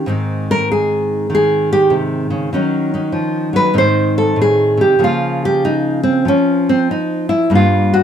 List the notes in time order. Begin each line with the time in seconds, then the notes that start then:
0.06 G#2 D#3 C4 D#4
0.51 A#4
0.72 G#4
1.30 D#3
1.35 G#4
1.73 G4
1.90 C3
2.30 C#3
2.53 D#3 F#3 C#4 D#4
2.94 C#4 D#4
3.12 F3
3.53 F#3 B4
3.73 G#2 D#3 C4 D#4
3.78 C5
4.18 A4
4.36 A2
4.42 G#4
4.77 C3 G4
4.99 C#3 F3 A#3
5.04 F4
5.45 G4
5.65 D#4
6.03 C4
6.25 F3 C#4
6.69 C4
6.91 D#4
7.29 E4
7.50 G2 G3 A#3
7.55 F4
7.93 F#4